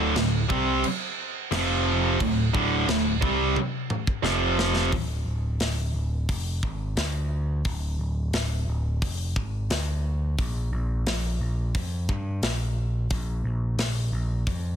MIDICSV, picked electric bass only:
0, 0, Header, 1, 2, 480
1, 0, Start_track
1, 0, Tempo, 681044
1, 1553, Time_signature, 4, 2, 24, 8
1, 10403, End_track
2, 0, Start_track
2, 0, Title_t, "Picked electric bass"
2, 0, Program_c, 0, 34
2, 0, Note_on_c, 0, 26, 106
2, 96, Note_off_c, 0, 26, 0
2, 111, Note_on_c, 0, 26, 78
2, 336, Note_off_c, 0, 26, 0
2, 349, Note_on_c, 0, 36, 101
2, 574, Note_off_c, 0, 36, 0
2, 1068, Note_on_c, 0, 29, 109
2, 1522, Note_off_c, 0, 29, 0
2, 1550, Note_on_c, 0, 26, 83
2, 1775, Note_off_c, 0, 26, 0
2, 1794, Note_on_c, 0, 26, 94
2, 2017, Note_off_c, 0, 26, 0
2, 2027, Note_on_c, 0, 26, 79
2, 2252, Note_off_c, 0, 26, 0
2, 2270, Note_on_c, 0, 36, 99
2, 2494, Note_off_c, 0, 36, 0
2, 2985, Note_on_c, 0, 29, 100
2, 3441, Note_off_c, 0, 29, 0
2, 3470, Note_on_c, 0, 26, 101
2, 3694, Note_off_c, 0, 26, 0
2, 3707, Note_on_c, 0, 26, 71
2, 3933, Note_off_c, 0, 26, 0
2, 3948, Note_on_c, 0, 26, 71
2, 4174, Note_off_c, 0, 26, 0
2, 4187, Note_on_c, 0, 26, 74
2, 4413, Note_off_c, 0, 26, 0
2, 4432, Note_on_c, 0, 29, 84
2, 4656, Note_off_c, 0, 29, 0
2, 4671, Note_on_c, 0, 32, 93
2, 4896, Note_off_c, 0, 32, 0
2, 4909, Note_on_c, 0, 38, 95
2, 5364, Note_off_c, 0, 38, 0
2, 5392, Note_on_c, 0, 26, 103
2, 5617, Note_off_c, 0, 26, 0
2, 5631, Note_on_c, 0, 26, 82
2, 5856, Note_off_c, 0, 26, 0
2, 5869, Note_on_c, 0, 26, 73
2, 6095, Note_off_c, 0, 26, 0
2, 6115, Note_on_c, 0, 26, 81
2, 6339, Note_off_c, 0, 26, 0
2, 6357, Note_on_c, 0, 29, 74
2, 6580, Note_off_c, 0, 29, 0
2, 6597, Note_on_c, 0, 32, 91
2, 6820, Note_off_c, 0, 32, 0
2, 6838, Note_on_c, 0, 38, 96
2, 7289, Note_off_c, 0, 38, 0
2, 7318, Note_on_c, 0, 34, 100
2, 7541, Note_off_c, 0, 34, 0
2, 7558, Note_on_c, 0, 34, 85
2, 7781, Note_off_c, 0, 34, 0
2, 7797, Note_on_c, 0, 34, 80
2, 8020, Note_off_c, 0, 34, 0
2, 8037, Note_on_c, 0, 34, 79
2, 8261, Note_off_c, 0, 34, 0
2, 8280, Note_on_c, 0, 41, 81
2, 8502, Note_off_c, 0, 41, 0
2, 8520, Note_on_c, 0, 43, 98
2, 8742, Note_off_c, 0, 43, 0
2, 8756, Note_on_c, 0, 34, 88
2, 9208, Note_off_c, 0, 34, 0
2, 9238, Note_on_c, 0, 34, 97
2, 9461, Note_off_c, 0, 34, 0
2, 9474, Note_on_c, 0, 34, 74
2, 9699, Note_off_c, 0, 34, 0
2, 9711, Note_on_c, 0, 34, 77
2, 9937, Note_off_c, 0, 34, 0
2, 9954, Note_on_c, 0, 34, 82
2, 10178, Note_off_c, 0, 34, 0
2, 10196, Note_on_c, 0, 41, 76
2, 10403, Note_off_c, 0, 41, 0
2, 10403, End_track
0, 0, End_of_file